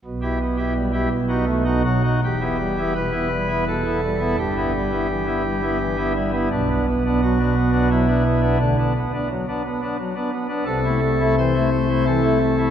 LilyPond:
<<
  \new Staff \with { instrumentName = "Pipe organ" } { \time 3/4 \key e \minor \tempo 4 = 86 r2 r8 fis'8 | g'4 b'4 a'4 | g'2~ g'8 e'8 | d'4 fis'4 e'4 |
d'2~ d'8 r8 | a'4 c''4 a'4 | }
  \new Staff \with { instrumentName = "Pipe organ" } { \time 3/4 \key e \minor << { b,16 <e' g'>16 b16 <e' g'>16 g16 <e' g'>16 b,16 <dis' fis'>16 a16 <dis' fis'>16 fis16 <dis' fis'>16 | e,16 <b e'>16 g16 <b e'>16 b,16 <b e'>16 g16 <b e'>16 b,16 <b e'>16 g16 <b e'>16 | g,16 <b e'>16 g16 <b e'>16 e16 <b e'>16 g16 <b e'>16 e16 <b e'>16 g16 <b e'>16 | b,16 <b d'>16 b16 <b d'>16 fis16 <b d'>16 b16 <b d'>16 fis16 <b d'>16 b16 <b d'>16 |
d16 <b d'>16 b16 <b d'>16 fis16 <b d'>16 b16 <b d'>16 fis16 <b d'>16 b16 <b d'>16 | c16 <a e'>16 a16 <a e'>16 e16 <a e'>16 a16 <a e'>16 e16 <a e'>16 a16 <a e'>16 | } \\ { b,,4. b,,4 r8 | e,,2. | g,,2. | b,,2. |
d,16 r2 r8. | c,2. | } >> }
>>